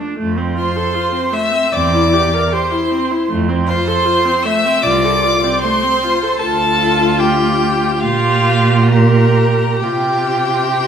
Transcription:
0.00 0.18 D4 medium
0.18 0.84 F2 medium
0.18 0.38 A3 medium
0.37 0.56 C4 medium
0.55 0.78 F4 medium
0.55 1.35 C6 loud
0.59 1.35 C5 medium
0.76 0.96 A4 medium
0.94 1.14 F4 medium
1.12 1.33 C4 medium
1.32 1.53 A3 medium
1.32 1.74 E5 medium
1.32 1.74 E6 loud
1.51 1.71 C4 medium
1.72 2.40 E2 medium
1.72 1.94 C4 medium
1.72 2.56 D5 medium
1.72 2.52 D6 loud
1.92 2.14 E4 medium
2.13 2.35 G4 medium
2.34 2.54 A#4 medium
2.52 2.73 G4 medium
2.52 3.31 C5 medium
2.52 3.29 C6 medium
2.71 2.93 E4 medium
2.91 3.13 C4 medium
3.11 3.29 E4 medium
3.30 3.94 F2 medium
3.30 3.50 A3 medium
3.48 3.69 C4 medium
3.66 3.89 F4 medium
3.66 4.47 C5 loud
3.66 4.45 C6 loud
3.87 4.06 A4 medium
4.05 4.27 F4 medium
4.25 4.46 C4 medium
4.43 4.66 A3 medium
4.43 4.85 E5 loud
4.43 4.83 E6 loud
4.65 4.83 C4 medium
4.81 5.49 C2 medium
4.81 5.06 F4 medium
4.81 5.61 D5 medium
4.81 5.61 D6 loud
5.05 5.25 A4 medium
5.24 5.45 F4 medium
5.44 5.65 C4 medium
5.60 6.42 C5 medium
5.60 6.38 C6 loud
5.64 5.85 A3 medium
5.83 6.05 C4 medium
6.03 6.24 F4 medium
6.23 6.42 A4 medium
6.39 8.04 D2 medium
6.39 7.21 A4 loud
6.39 7.20 A5 loud
6.43 7.99 F4 medium
7.19 8.02 G4 medium
7.19 8.01 G5 loud
8.00 9.82 A#2 medium
8.00 8.93 F4 medium
8.00 8.91 G4 medium
8.00 8.92 F5 loud
8.91 9.84 G4 medium
8.91 9.79 A#4 medium
8.91 9.81 A#5 medium
9.79 10.87 C3 medium
9.79 10.62 F4 medium
9.79 10.87 G4 medium
9.79 10.87 G5 loud
10.72 10.87 G4 medium

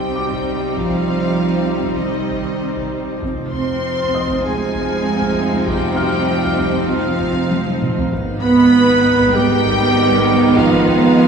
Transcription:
0.00 3.18 C2 soft
0.00 3.18 C3 soft
0.00 0.77 G3 medium
0.00 3.18 G3 medium
0.00 3.17 C4 medium
0.00 3.17 C4 soft
0.00 3.19 C4 medium
0.00 3.17 D#4 soft
0.00 3.18 D#4 medium
0.00 0.79 G4 medium
0.00 3.18 C5 medium
0.00 0.76 G5 medium
0.00 3.18 D6 medium
0.00 impact medium
0.16 1.95 D6 medium
0.31 taiko medium
0.76 1.97 F3 medium
0.76 2.01 F4 medium
0.76 1.99 F5 medium
0.76 taiko medium
1.84 taiko medium
1.98 3.22 D#3 medium
1.98 3.22 D#4 medium
1.98 3.19 D#5 medium
2.30 taiko medium
2.76 taiko medium
3.21 8.11 F1 medium
3.21 7.95 C3 medium
3.21 7.95 F3 medium
3.21 8.07 F3 medium
3.21 8.07 C4 medium
3.21 7.96 C4 medium
3.21 8.07 C4 medium
3.21 8.07 D#4 medium
3.21 7.96 D#4 medium
3.21 8.07 C5 medium
3.21 8.11 F5 medium
3.21 taiko medium
3.51 4.40 C4 medium
3.51 4.47 C5 medium
3.51 4.39 C6 medium
3.51 taiko low soft
3.98 taiko low soft
4.14 5.94 D#5 soft
4.14 5.94 D#6 medium
4.14 taiko low medium
4.30 taiko medium
4.44 5.67 G#3 medium
4.44 5.66 G#4 medium
4.44 5.66 G#5 medium
4.44 taiko low medium
4.75 taiko medium
5.21 taiko medium
5.52 taiko low soft
5.65 6.89 G3 medium
5.65 6.91 G4 medium
5.65 6.88 G5 loud
5.65 taiko medium
5.96 7.77 F5 soft
5.96 7.76 F6 medium
5.96 taiko low medium
6.44 taiko low soft
6.59 taiko low medium
6.75 taiko medium
6.89 8.12 F3 medium
6.89 8.12 F4 medium
6.89 8.11 F5 medium
6.89 taiko low medium
7.20 taiko medium
7.51 taiko high medium
7.67 taiko high medium
7.82 taiko mid medium
7.97 taiko low medium
8.10 11.28 G#1 medium
8.10 11.28 G#2 medium
8.10 11.28 D#3 medium
8.10 11.28 B3 medium
8.10 11.28 D#4 medium
8.10 11.28 D#5 medium
8.10 11.28 B5 medium
8.10 taiko medium
8.41 9.30 B3 loud
8.41 9.37 B4 loud
8.41 9.29 B5 loud
8.41 taiko low medium
8.89 taiko low soft
9.04 taiko low medium
9.19 taiko medium
9.33 10.56 G3 loud
9.33 10.56 G4 loud
9.33 10.56 G5 loud
9.33 taiko low medium
9.65 taiko medium
10.11 taiko medium
10.42 taiko low soft
10.56 11.28 F3 medium
10.56 11.28 F4 medium
10.56 11.28 F5 medium
10.56 taiko medium
10.88 taiko low medium

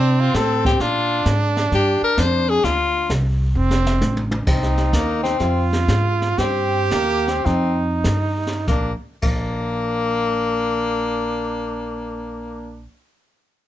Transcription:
0.00 0.32 C3 medium
0.00 0.82 C4 loud
0.00 0.22 D4 medium
0.21 0.37 F4 medium
0.34 0.79 A2 medium
0.34 0.65 A4 medium
0.34 kick soft
0.34 snare medium
0.34 hi-hat pedal medium
0.65 0.82 G4 medium
0.65 kick medium
0.65 snare soft
0.80 1.24 A#2 medium
0.80 3.35 D4 loud
0.80 1.26 F4 medium
0.80 brush sweep medium
0.80 kick soft
0.80 snare soft
1.25 1.70 G#2 medium
1.25 kick soft
1.25 snare medium
1.25 hi-hat pedal medium
1.57 snare soft
1.72 2.00 G2 medium
1.72 2.02 G4 loud
1.72 brush sweep medium
1.72 kick soft
1.72 snare soft
2.02 2.21 A#4 loud
2.02 muted upright bass stroke soft
2.17 2.62 F2 medium
2.17 2.51 C5 medium
2.17 kick soft
2.17 snare medium
2.17 hi-hat pedal medium
2.49 2.66 G#4 loud
2.64 3.08 D2 medium
2.64 3.10 F4 loud
2.64 brush sweep soft
2.64 kick soft
2.64 snare soft
3.09 3.54 C2 medium
3.09 kick soft
3.09 snare medium
3.09 hi-hat pedal medium
3.55 4.00 F1 medium
3.55 4.28 C4 loud
3.71 snare medium
3.86 snare medium
4.01 4.46 A1 medium
4.01 hi-hat pedal medium
4.01 high tom medium
4.17 high tom medium
4.31 high tom medium
4.47 4.92 C2 medium
4.47 4.95 C4 medium
4.47 5.36 D#4 medium
4.47 brush sweep soft
4.47 kick medium
4.47 snare soft
4.47 crash medium
4.63 snare soft
4.77 snare soft
4.93 5.39 D#2 medium
4.93 5.22 A#3 medium
4.93 kick soft
4.93 snare medium
4.93 hi-hat pedal medium
5.23 5.68 C4 medium
5.23 snare soft
5.39 5.87 F2 medium
5.39 6.39 F4 loud
5.39 brush sweep soft
5.39 kick soft
5.39 snare soft
5.73 snare soft
5.88 6.37 G#2 medium
5.88 kick soft
5.88 snare medium
5.88 hi-hat pedal medium
6.22 snare soft
6.38 6.89 G2 medium
6.38 6.94 C4 medium
6.38 7.47 G4 loud
6.38 brush sweep soft
6.38 kick soft
6.38 snare soft
6.91 7.44 D#2 medium
6.91 7.30 A#3 medium
6.91 kick soft
6.91 snare medium
6.91 hi-hat pedal medium
7.28 7.86 C4 medium
7.28 snare soft
7.45 8.03 F2 medium
7.45 8.67 D#4 medium
7.45 brush sweep soft
7.45 kick soft
7.45 snare soft
8.04 8.66 G2 medium
8.04 kick soft
8.04 snare medium
8.04 hi-hat pedal medium
8.47 snare soft
8.67 8.92 A#1 medium
8.67 8.92 A#3 medium
8.67 8.93 D4 medium
8.67 kick soft
8.67 snare medium
9.22 12.85 A#1 medium
9.22 12.85 A#3 medium
9.22 12.87 D4 medium
9.22 kick medium
9.22 crash medium

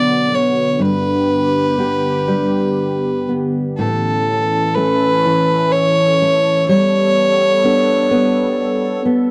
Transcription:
0.00 0.80 B2 medium
0.00 3.74 D3 medium
0.00 0.90 F#3 medium
0.00 0.31 B3 medium
0.00 3.74 B3 medium
0.00 1.78 D4 medium
0.00 0.76 F#4 medium
0.00 0.90 F#4 medium
0.00 0.36 D5 medium
0.32 1.78 B3 medium
0.32 0.83 C#5 medium
0.79 3.78 G2 medium
0.79 3.76 G4 medium
0.79 3.30 B4 medium
1.78 3.28 B3 soft
1.78 3.89 D4 soft
1.78 3.89 G4 soft
2.28 3.88 G3 medium
3.29 3.88 B3 soft
3.78 6.69 A2 medium
3.78 6.66 E3 medium
3.78 6.66 C#4 medium
3.78 4.77 A4 medium
3.78 9.31 A4 medium
4.75 6.22 A3 medium
4.75 6.79 C#4 medium
4.75 7.65 A4 medium
4.75 5.74 B4 medium
5.26 6.69 E3 medium
5.72 6.68 C#5 loud
6.22 7.64 A3 medium
6.68 9.31 G3 medium
6.68 9.31 B3 medium
6.68 9.01 C#5 loud
7.64 8.10 B3 medium
7.64 9.31 D4 medium
7.64 9.31 A4 medium
8.11 9.04 B3 medium
9.05 9.31 B3 medium

